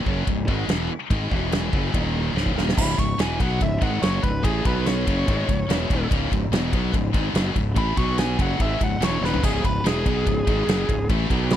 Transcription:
0.06 fingered electric bass F#1, distorted electric guitar F#2 C#3 F#3, kick
0.27 fingered electric bass C#1, distorted electric guitar C#2 G#2, kick, ride bell
0.48 fingered electric bass G#1, distorted electric guitar G#2 D#3 G#3, kick
0.68 fingered electric bass E1, distorted electric guitar E2 B2 E3, snare, ride bell
1.10 fingered electric bass G#1, distorted electric guitar G#2 D#3 G#3, kick, ride bell
1.31 fingered electric bass E1, distorted electric guitar E2 B2 E3, kick
1.52 snare, ride bell
1.73 fingered electric bass F#1, distorted electric guitar F#2 C#3 F#3, kick
1.94 fingered electric bass D#1, distorted electric guitar D#2 A#2 D#3, kick, ride bell
2.35 fingered electric bass C#1, distorted electric guitar C#2 G#2 C#3, snare
2.46 kick
2.55 fingered electric bass D#1, distorted electric guitar D#2 A#2 D#3, snare
2.69 snare
2.77 fingered electric bass C#1, distorted electric guitar C#2 G#2 C#3, lead electric guitar B5, kick, crash
2.98 fingered electric bass C#1, distorted electric guitar C#2 G#2, lead electric guitar C#6, kick, ride
3.18 fingered electric bass E1, distorted electric guitar E2 B2 E3, lead electric guitar G#5, snare, ride
3.39 fingered electric bass B1, distorted electric guitar B2 F#3 B3, lead electric guitar F#5, kick, ride
3.61 fingered electric bass C#1, distorted electric guitar C#2 G#2, lead electric guitar E5, kick, ride
3.81 fingered electric bass G#1, distorted electric guitar G#2 D#3 G#3, lead electric guitar F#5, kick, ride
4.02 fingered electric bass F#1, distorted electric guitar F#2 C#3 F#3, lead electric guitar C#5, snare, ride
4.23 fingered electric bass C#1, distorted electric guitar C#2 G#2, lead electric guitar B4, kick, ride
4.43 fingered electric bass A1, distorted electric guitar A2 E3 A3, lead electric guitar G#4, kick, ride
4.64 fingered electric bass B1, distorted electric guitar B2 F#3 B3, lead electric guitar B4, kick, ride
4.86 lead electric guitar C#5, snare, ride
5.06 fingered electric bass F#1, distorted electric guitar F#2 C#3 F#3, kick, ride
5.27 fingered electric bass G#1, distorted electric guitar G#2 D#3 G#3, kick, ride
5.48 fingered electric bass C#1, distorted electric guitar C#2 G#2, kick, ride
5.68 fingered electric bass E1, distorted electric guitar E2 B2 E3, snare, ride
5.90 fingered electric bass D#1, distorted electric guitar D#2 A#2 D#3, kick, ride
6.10 fingered electric bass C#1, distorted electric guitar C#2 G#2 C#3, kick, ride
6.31 fingered electric bass C#1, distorted electric guitar C#2 G#2, kick, ride
6.51 fingered electric bass E1, distorted electric guitar E2 B2 E3, snare, ride
6.73 fingered electric bass B1, distorted electric guitar B2 F#3 B3, kick, ride
6.93 fingered electric bass C#1, distorted electric guitar C#2 G#2, kick, ride
7.13 fingered electric bass G#1, distorted electric guitar G#2 D#3 G#3, kick, ride
7.33 fingered electric bass F#1, distorted electric guitar F#2 C#3 F#3, snare, ride
7.55 fingered electric bass C#1, distorted electric guitar C#2 G#2, kick, ride
7.76 fingered electric bass A1, distorted electric guitar A2 E3 A3, lead electric guitar B5, kick, ride
7.97 fingered electric bass B1, distorted electric guitar B2 F#3 B3, lead electric guitar C#6, kick, ride
8.18 lead electric guitar G#5, snare, ride
8.39 fingered electric bass F#1, distorted electric guitar F#2 C#3 F#3, lead electric guitar F#5, kick, ride
8.59 fingered electric bass G#1, distorted electric guitar G#2 D#3 G#3, lead electric guitar E5, kick, ride
8.80 fingered electric bass C#1, distorted electric guitar C#2 G#2, lead electric guitar F#5, kick, ride
9.01 fingered electric bass E1, distorted electric guitar E2 B2 E3, lead electric guitar C#5, snare, ride
9.21 fingered electric bass D#1, distorted electric guitar D#2 A#2 D#3, lead electric guitar B4, snare
9.34 floor tom
9.43 fingered electric bass C#1, distorted electric guitar C#2 G#2 C#3, lead electric guitar G#4, kick, crash, ride
9.64 fingered electric bass C#1, distorted electric guitar C#2 G#2, lead electric guitar B4, kick, ride
9.84 fingered electric bass E1, distorted electric guitar E2 B2 E3, lead electric guitar G#4, snare, ride
10.06 fingered electric bass B1, distorted electric guitar B2 F#3 B3, kick, ride
10.26 fingered electric bass C#1, distorted electric guitar C#2 G#2, kick, ride
10.47 fingered electric bass G#1, distorted electric guitar G#2 D#3 G#3, kick, ride
10.67 fingered electric bass F#1, distorted electric guitar F#2 C#3 F#3, snare, ride
10.89 fingered electric bass C#1, distorted electric guitar C#2 G#2, kick, ride
11.09 fingered electric bass A1, distorted electric guitar A2 E3 A3, kick, ride
11.30 fingered electric bass B1, distorted electric guitar B2 F#3 B3, kick, ride
11.50 lead electric guitar E5 C#6, snare, ride

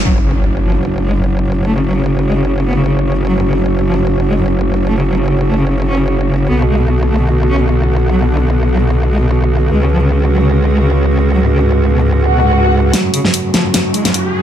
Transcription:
0.05 wobble bass F#1, ambient pad C#3 A3 F#4, cello F#3, impact
0.16 cello F#2
0.25 cello C#3
0.36 cello F#2
0.45 cello F#2
0.56 cello F#2
0.65 cello F3
0.76 cello F#2
0.85 cello F#2
0.96 cello F#2
1.06 cello G#3
1.16 cello F#2
1.26 cello F#2
1.46 cello F#2
1.57 cello F#2
1.66 cello A3
1.77 cello C#3
1.86 cello F#3
1.97 cello C#3
2.06 cello C#3
2.17 cello C#3
2.26 cello G#3
2.37 cello C#3
2.46 cello C#3
2.57 cello C#3
2.67 cello B3
2.78 cello C#3
2.87 cello C#3
3.07 cello C#3
3.18 cello C#3
3.27 cello F#3
3.38 cello F#2
3.47 cello C#3
3.58 cello F#2
3.67 cello F#2
3.78 cello F#2
3.87 cello F3
3.98 cello F#2
4.08 cello F#2
4.18 cello F#2
4.28 cello G#3
4.39 cello F#2
4.48 cello F#2
4.68 cello F#2
4.79 cello F#2
4.88 cello A3
4.99 cello C#3
5.08 cello F#3
5.19 cello C#3
5.28 cello C#3
5.39 cello C#3
5.48 cello A3
5.59 cello C#3
5.69 cello C#3
5.80 cello C#3
5.89 cello C#4
6.00 cello C#3
6.09 cello C#3
6.29 cello C#3
6.40 cello C#3
6.49 wobble bass B1, ambient pad D3 B3, cello B3
6.60 cello B2
6.69 cello G#3
6.80 cello B2
6.89 cello B2
7.00 cello B2
7.10 cello A3
7.21 cello B2
7.30 cello B2
7.41 cello B2
7.50 cello C#4
7.61 cello B2
7.70 cello B2
7.90 cello B2
8.01 cello B2
8.10 cello F#3
8.21 cello B2
8.30 cello D3
8.41 cello B2
8.51 cello B2
8.61 cello B2
8.71 cello F#3
8.82 cello B2
8.91 cello B2
9.02 cello B2
9.11 cello G#3
9.22 cello B2
9.31 cello B2
9.51 cello B2
9.62 cello B2
9.71 wobble bass C#2, ambient pad C#3 G#3 F#4, cello G#3
9.82 cello C#3
9.92 cello F3
10.02 cello C#3
10.12 cello C#3
10.23 cello C#3
10.32 cello F#3
10.43 cello C#3
10.52 cello C#3
10.63 cello C#3
10.72 cello G#3
10.83 cello C#3
10.92 cello C#3
11.12 cello C#3
11.23 cello C#3
11.32 cello F#3
11.43 cello G#2
11.52 cello C#3
11.63 cello G#2
11.73 cello G#2
11.84 cello G#2
11.93 cello B2
12.04 cello G#2
12.13 cello G#2, swell
12.24 cello G#2
12.33 cello B2
12.44 cello G#2
12.53 cello G#2
12.73 cello G#2
12.84 cello G#2
12.93 ambient pad C#3 A3 F#4, cello F#3, snare, closed hi-hat, riser
13.04 cello F#2
13.14 cello C#3, closed hi-hat
13.25 cello F#2, snare
13.34 cello F#2, closed hi-hat
13.45 cello F#2
13.54 cello F3, snare, closed hi-hat
13.65 cello F#2
13.74 cello F#2, snare, closed hi-hat
13.85 cello F#2
13.94 cello G#3, closed hi-hat
14.05 cello F#2, snare, closed hi-hat
14.14 cello F#2, closed hi-hat
14.34 cello F#2

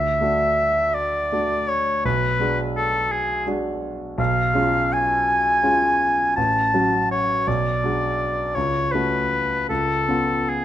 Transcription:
Already playing: grand piano D2, oboe E5
0.21 grand piano A3 D4 F#4
0.94 oboe D5
1.32 grand piano A3 D4 F#4
1.68 oboe C#5
2.05 grand piano B1, oboe B4
2.40 grand piano G#3 D4 F#4
2.76 oboe A4
3.12 oboe G#4
3.46 grand piano G#3 D4 F#4
4.18 grand piano B1, oboe F5
4.54 grand piano G#3 C#4 F4
4.93 oboe G#5
5.63 grand piano G#3 C#4 F4
6.36 grand piano A1, oboe A5
6.73 grand piano F#3 C#4 F#4
7.11 oboe C#5
7.47 grand piano B1, oboe D5
7.84 grand piano G#3 D4 F#4
8.55 grand piano C#2, oboe C#5
8.92 grand piano A3 C#4 F#4, oboe B4
9.69 grand piano C#2, oboe A4
10.08 grand piano B3 C#4 F4
10.49 oboe G#4

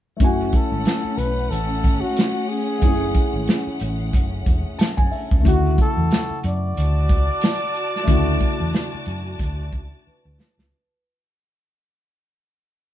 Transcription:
0.17 fingered electric bass F#1, grand piano A3 C#4, kick, closed hi-hat
0.21 string section A3 C#4 F#5, grand piano E4 G#5, flugelhorn F#4
0.52 flugelhorn A4, kick, closed hi-hat
0.72 fingered electric bass G#1
0.85 snare, closed hi-hat
1.04 muted fingered electric bass stroke
1.17 fingered electric bass B1, flugelhorn B4, closed hi-hat
1.50 fingered electric bass A1, flugelhorn A4, closed hi-hat
1.84 fingered electric bass G#1, kick, closed hi-hat
2.01 flugelhorn F#4
2.16 snare, closed hi-hat
2.48 flugelhorn G#4, open hi-hat
2.79 fingered electric bass F#1, grand piano A3 C#4, kick, closed hi-hat
2.84 grand piano E4 G#4
3.14 kick, closed hi-hat
3.33 fingered electric bass G#1
3.47 snare, closed hi-hat
3.67 muted fingered electric bass stroke
3.80 fingered electric bass A1, closed hi-hat
4.13 fingered electric bass F#1, kick, closed hi-hat
4.46 fingered electric bass E1, kick, closed hi-hat
4.79 grand piano A5, muted fingered electric bass stroke, snare, closed hi-hat
4.97 fingered electric bass F#1, grand piano G#5, kick
5.12 grand piano E5, open hi-hat
5.31 fingered electric bass C#2, kick
5.40 grand piano C#3 A3
5.45 fingered electric bass D2, grand piano E4 F#4, flugelhorn F#4, vibraphone C#6, kick, closed hi-hat
5.68 vibraphone E5
5.78 flugelhorn A4, kick, closed hi-hat
5.88 vibraphone F#5
5.97 fingered electric bass E2
6.11 snare, closed hi-hat
6.30 muted fingered electric bass stroke
6.44 fingered electric bass F#2, flugelhorn D5, closed hi-hat
6.77 fingered electric bass D2, string section F#4 D5 A5, closed hi-hat
7.09 fingered electric bass C#2, kick, closed hi-hat
7.41 snare, closed hi-hat
7.75 closed hi-hat
7.96 snare
8.04 fingered electric bass D2, grand piano C#3 A3, kick, closed hi-hat
8.09 grand piano E4 F#4
8.40 kick, closed hi-hat
8.60 fingered electric bass E2
8.73 snare, closed hi-hat
8.94 muted fingered electric bass stroke
9.06 fingered electric bass F#2, closed hi-hat
9.39 fingered electric bass D2, kick, closed hi-hat
9.72 fingered electric bass C#2, kick, closed hi-hat
10.06 vibraphone B4, muted fingered electric bass stroke
10.25 fingered electric bass D2
10.40 snare
10.58 fingered electric bass C#2, snare

